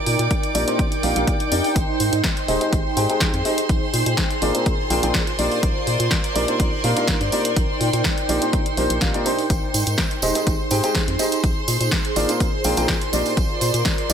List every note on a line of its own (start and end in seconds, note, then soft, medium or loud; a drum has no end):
0.00 3.69 D#4 medium
0.00 2.54 A#4 medium
0.00 1.77 D5 medium
0.00 2.54 D5 medium
0.00 3.69 G5 medium
0.00 1.77 D6 medium
0.06 0.16 A#2 medium
0.06 open hi-hat loud
0.19 0.28 A#2 medium
0.19 closed hi-hat soft
0.31 kick loud
0.31 closed hi-hat medium
0.43 closed hi-hat soft
0.55 0.65 A#1 medium
0.55 0.66 A#2 medium
0.55 0.66 D4 medium
0.55 0.66 D#4 medium
0.55 0.66 G4 medium
0.55 0.66 A#4 medium
0.55 0.66 D5 loud
0.55 open hi-hat loud
0.68 0.83 A#2 medium
0.68 0.83 D4 medium
0.68 0.83 D#4 medium
0.68 0.83 G4 medium
0.68 0.83 A#4 medium
0.68 0.83 C5 medium
0.68 closed hi-hat medium
0.79 kick loud
0.79 closed hi-hat medium
0.92 closed hi-hat soft
1.03 1.13 A#1 medium
1.03 1.13 A#2 medium
1.03 1.13 D4 medium
1.03 1.13 D#4 medium
1.03 1.13 G4 medium
1.03 1.13 A#4 medium
1.03 1.13 F5 medium
1.03 open hi-hat loud
1.16 1.25 A#1 medium
1.16 1.32 A#2 medium
1.16 1.32 D4 medium
1.16 1.32 D#4 medium
1.16 1.32 G4 medium
1.16 1.32 A#4 medium
1.16 1.32 F5 medium
1.16 closed hi-hat soft
1.27 kick loud
1.27 closed hi-hat medium
1.40 closed hi-hat soft
1.52 1.61 F2 medium
1.52 1.68 D4 medium
1.52 1.68 D#4 medium
1.52 1.68 G4 medium
1.52 1.68 A#4 medium
1.52 1.68 D5 medium
1.52 open hi-hat loud
1.64 open hi-hat medium
1.76 1.86 G#1 loud
1.76 9.49 C5 medium
1.76 9.49 C6 medium
1.76 kick loud
1.76 closed hi-hat medium
1.89 4.36 G#4 medium
1.96 2.10 G#2 medium
1.96 4.37 C5 medium
1.96 open hi-hat loud
2.13 2.22 G#2 medium
2.13 closed hi-hat soft
2.24 kick loud
2.24 snare loud
2.24 closed hi-hat medium
2.37 closed hi-hat soft
2.48 2.58 D#1 medium
2.48 2.59 G#3 medium
2.48 2.59 D#4 medium
2.48 2.59 G4 medium
2.48 2.59 G#4 medium
2.48 2.59 C5 medium
2.48 2.59 D#5 loud
2.48 open hi-hat medium
2.61 2.77 G#3 medium
2.61 2.77 D#4 medium
2.61 2.77 G4 medium
2.61 2.77 G#4 medium
2.61 2.77 C5 medium
2.61 2.77 D#5 medium
2.61 closed hi-hat soft
2.73 2.82 G#1 medium
2.73 kick loud
2.73 closed hi-hat medium
2.97 3.07 G#2 medium
2.97 3.07 G#3 medium
2.97 3.07 D#4 medium
2.97 3.07 G4 medium
2.97 3.07 G#4 medium
2.97 3.07 C5 medium
2.97 3.07 G5 medium
2.97 open hi-hat loud
3.10 3.25 G#3 medium
3.10 3.25 D#4 medium
3.10 3.25 G4 medium
3.10 3.25 G#4 medium
3.10 3.25 C5 medium
3.10 3.25 G5 medium
3.10 closed hi-hat soft
3.20 kick loud
3.20 snare loud
3.20 closed hi-hat medium
3.34 3.43 F2 medium
3.34 closed hi-hat soft
3.45 3.62 D#4 medium
3.45 3.62 G4 medium
3.45 3.62 G#4 medium
3.45 3.62 C5 medium
3.45 3.62 D#5 medium
3.45 open hi-hat loud
3.58 closed hi-hat soft
3.69 3.79 A#1 medium
3.69 6.84 F4 medium
3.69 kick loud
3.69 closed hi-hat medium
3.81 10.28 A#4 medium
3.81 10.28 D5 medium
3.94 4.03 A#2 medium
3.94 open hi-hat loud
4.06 4.15 A#2 medium
4.06 closed hi-hat medium
4.17 kick medium
4.17 snare loud
4.17 closed hi-hat medium
4.31 closed hi-hat soft
4.42 4.52 G#1 medium
4.42 4.53 A#2 medium
4.42 4.53 D4 medium
4.42 4.53 F4 medium
4.42 4.53 G#4 medium
4.42 4.53 A#4 medium
4.42 4.53 D5 loud
4.42 open hi-hat loud
4.55 4.70 A#2 medium
4.55 4.70 D4 medium
4.55 4.70 F4 medium
4.55 4.70 G#4 medium
4.55 4.70 A#4 medium
4.55 4.70 C5 medium
4.55 closed hi-hat medium
4.66 kick loud
4.66 closed hi-hat medium
4.90 5.00 A#1 medium
4.90 5.00 A#2 medium
4.90 5.00 D4 medium
4.90 5.00 F4 medium
4.90 5.00 G#4 medium
4.90 5.00 A#4 medium
4.90 5.00 G5 medium
4.90 open hi-hat medium
5.03 5.12 A#1 medium
5.03 5.19 A#2 medium
5.03 5.19 D4 medium
5.03 5.19 F4 medium
5.03 5.19 G#4 medium
5.03 5.19 A#4 medium
5.03 5.19 G5 medium
5.03 closed hi-hat soft
5.14 kick medium
5.14 snare loud
5.14 closed hi-hat medium
5.27 closed hi-hat soft
5.39 5.49 A#1 medium
5.39 5.55 A#2 medium
5.39 5.55 D4 medium
5.39 5.55 D#4 medium
5.39 11.44 D#4 medium
5.39 5.55 G4 medium
5.39 5.55 A#4 medium
5.39 5.55 D5 medium
5.39 open hi-hat loud
5.52 open hi-hat medium
5.63 5.73 A#1 loud
5.63 kick loud
5.63 closed hi-hat medium
5.87 5.97 A#2 medium
5.87 open hi-hat loud
6.00 6.09 A#2 medium
6.00 11.44 G5 medium
6.00 closed hi-hat medium
6.11 kick loud
6.11 snare loud
6.11 closed hi-hat medium
6.24 closed hi-hat soft
6.36 6.45 A#1 medium
6.36 6.46 A#2 medium
6.36 6.46 D4 medium
6.36 6.46 D#4 medium
6.36 6.46 G4 medium
6.36 6.46 A#4 medium
6.36 6.46 D5 loud
6.36 open hi-hat loud
6.48 6.64 A#2 medium
6.48 6.64 D4 medium
6.48 6.64 D#4 medium
6.48 6.64 G4 medium
6.48 6.64 A#4 medium
6.48 6.64 C5 medium
6.48 closed hi-hat medium
6.60 6.70 A#1 medium
6.60 kick loud
6.60 closed hi-hat medium
6.84 6.94 A#2 medium
6.84 6.94 D4 medium
6.84 6.94 D#4 medium
6.84 6.94 G4 medium
6.84 6.94 A#4 medium
6.84 6.94 F5 medium
6.84 open hi-hat loud
6.97 7.12 A#2 medium
6.97 7.12 D4 medium
6.97 7.12 D#4 medium
6.97 7.12 G4 medium
6.97 7.12 A#4 medium
6.97 7.12 F5 medium
6.97 closed hi-hat medium
7.07 kick medium
7.07 snare loud
7.07 closed hi-hat medium
7.21 7.30 G2 medium
7.21 closed hi-hat soft
7.32 7.49 A#2 medium
7.32 7.49 D4 medium
7.32 7.49 D#4 medium
7.32 7.49 G4 medium
7.32 7.49 A#4 medium
7.32 7.49 D5 medium
7.32 open hi-hat loud
7.45 closed hi-hat medium
7.56 7.66 A#1 loud
7.56 kick loud
7.56 closed hi-hat medium
7.81 7.90 A#2 medium
7.81 open hi-hat loud
7.93 8.02 A#2 medium
7.93 closed hi-hat medium
8.04 kick loud
8.04 snare loud
8.04 closed hi-hat medium
8.18 closed hi-hat soft
8.29 8.39 A#1 medium
8.29 8.40 A#2 medium
8.29 8.40 D4 medium
8.29 8.40 D#4 medium
8.29 8.40 G4 medium
8.29 8.40 A#4 medium
8.29 8.40 D5 loud
8.29 open hi-hat loud
8.42 8.57 A#2 medium
8.42 8.57 D4 medium
8.42 8.57 D#4 medium
8.42 8.57 G4 medium
8.42 8.57 A#4 medium
8.42 8.57 C5 medium
8.42 closed hi-hat medium
8.53 kick loud
8.53 closed hi-hat medium
8.66 closed hi-hat soft
8.77 8.87 A#1 medium
8.77 8.94 A#2 medium
8.77 8.94 D4 medium
8.77 8.94 D#4 medium
8.77 8.94 G4 medium
8.77 8.94 A#4 medium
8.77 8.94 C5 medium
8.77 open hi-hat loud
8.90 8.99 A#1 medium
8.90 closed hi-hat medium
9.01 9.11 A#1 medium
9.01 9.12 A#2 medium
9.01 9.12 D4 medium
9.01 9.12 D#4 medium
9.01 9.12 G4 medium
9.01 9.12 A#4 medium
9.01 9.12 F5 medium
9.01 kick medium
9.01 snare loud
9.01 closed hi-hat medium
9.14 9.24 A#2 medium
9.14 9.24 D4 medium
9.14 9.24 D#4 medium
9.14 9.24 G4 medium
9.14 9.24 A#4 medium
9.14 9.24 D5 loud
9.14 closed hi-hat soft
9.26 9.42 D4 medium
9.26 9.42 D#4 medium
9.26 9.42 G4 medium
9.26 9.42 A#4 medium
9.26 9.42 C5 loud
9.26 open hi-hat loud
9.39 open hi-hat medium
9.50 9.60 G#1 loud
9.50 14.13 C5 medium
9.50 14.13 C6 medium
9.50 kick loud
9.50 closed hi-hat medium
9.50 tambourine soft
9.64 12.12 G#4 medium
9.74 9.84 G#2 medium
9.74 open hi-hat loud
9.74 tambourine medium
9.82 12.12 C5 medium
9.87 9.96 G#2 medium
9.87 closed hi-hat medium
9.87 tambourine soft
9.98 kick loud
9.98 snare loud
9.98 closed hi-hat medium
10.11 closed hi-hat soft
10.22 10.32 D#1 medium
10.22 10.33 G#3 medium
10.22 10.33 D#4 medium
10.22 10.33 G4 medium
10.22 10.33 G#4 medium
10.22 10.33 C5 medium
10.22 10.33 D#5 loud
10.22 open hi-hat loud
10.22 tambourine medium
10.35 10.51 G#3 medium
10.35 10.51 D#4 medium
10.35 10.51 G4 medium
10.35 10.51 G#4 medium
10.35 10.51 C5 medium
10.35 10.51 D#5 medium
10.35 closed hi-hat medium
10.35 tambourine medium
10.47 10.57 G#1 medium
10.47 kick loud
10.47 closed hi-hat medium
10.47 tambourine soft
10.71 10.81 G#2 medium
10.71 10.81 G#3 medium
10.71 10.81 D#4 medium
10.71 10.81 G4 medium
10.71 10.81 G#4 medium
10.71 10.81 C5 medium
10.71 10.81 G5 medium
10.71 open hi-hat loud
10.71 tambourine medium
10.83 10.99 G#3 medium
10.83 10.99 D#4 medium
10.83 10.99 G4 medium
10.83 10.99 G#4 medium
10.83 10.99 C5 medium
10.83 10.99 G5 medium
10.83 closed hi-hat medium
10.83 tambourine soft
10.95 kick loud
10.95 snare loud
10.95 closed hi-hat medium
11.08 11.17 F2 medium
11.08 closed hi-hat soft
11.19 11.36 D#4 medium
11.19 11.36 G4 medium
11.19 11.36 G#4 medium
11.19 11.36 C5 medium
11.19 11.36 D#5 medium
11.19 open hi-hat loud
11.19 tambourine medium
11.32 closed hi-hat medium
11.32 tambourine soft
11.43 11.53 A#1 loud
11.43 14.13 F4 medium
11.43 kick loud
11.43 closed hi-hat medium
11.43 tambourine soft
11.61 14.13 A#4 medium
11.68 11.78 A#2 medium
11.68 open hi-hat loud
11.68 tambourine medium
11.75 14.13 D5 medium
11.81 11.89 A#2 medium
11.81 closed hi-hat medium
11.81 tambourine soft
11.91 kick loud
11.91 snare loud
11.91 closed hi-hat medium
12.05 closed hi-hat soft
12.16 12.26 G#1 medium
12.16 12.27 A#2 medium
12.16 12.27 D4 medium
12.16 12.27 F4 medium
12.16 12.27 G#4 medium
12.16 12.27 A#4 medium
12.16 12.27 D5 loud
12.16 open hi-hat loud
12.16 tambourine medium
12.29 12.45 A#2 medium
12.29 12.45 D4 medium
12.29 12.45 F4 medium
12.29 12.45 G#4 medium
12.29 12.45 A#4 medium
12.29 12.45 C5 medium
12.29 closed hi-hat medium
12.29 tambourine medium
12.40 kick loud
12.40 closed hi-hat medium
12.40 tambourine soft
12.64 12.74 A#1 medium
12.64 12.74 A#2 medium
12.64 12.74 D4 medium
12.64 12.74 F4 medium
12.64 12.74 G#4 medium
12.64 12.74 A#4 medium
12.64 12.74 G5 medium
12.64 open hi-hat loud
12.64 tambourine medium
12.77 12.86 A#1 medium
12.77 12.93 A#2 medium
12.77 12.93 D4 medium
12.77 12.93 F4 medium
12.77 12.93 G#4 medium
12.77 12.93 A#4 medium
12.77 12.93 G5 medium
12.77 closed hi-hat medium
12.77 tambourine medium
12.88 kick loud
12.88 snare loud
12.88 closed hi-hat medium
13.02 closed hi-hat soft
13.13 13.23 A#1 medium
13.13 13.29 A#2 medium
13.13 13.29 D4 medium
13.13 14.13 D#4 medium
13.13 13.29 D#4 medium
13.13 13.29 G4 medium
13.13 13.29 A#4 medium
13.13 13.29 D5 medium
13.13 open hi-hat loud
13.13 tambourine loud
13.26 14.13 G5 medium
13.26 open hi-hat medium
13.26 tambourine soft
13.37 13.47 A#1 loud
13.37 kick loud
13.37 closed hi-hat medium
13.37 tambourine soft
13.61 13.71 A#2 medium
13.61 open hi-hat loud
13.61 tambourine medium
13.74 13.83 A#2 medium
13.74 closed hi-hat medium
13.74 tambourine medium
13.85 kick loud
13.85 snare loud
13.85 closed hi-hat medium
13.85 tambourine soft
13.98 closed hi-hat soft
14.10 14.13 A#1 medium
14.10 14.13 A#2 medium
14.10 14.13 D4 medium
14.10 14.13 D#4 medium
14.10 14.13 G4 medium
14.10 14.13 A#4 medium
14.10 14.13 D5 loud
14.10 open hi-hat loud
14.10 tambourine loud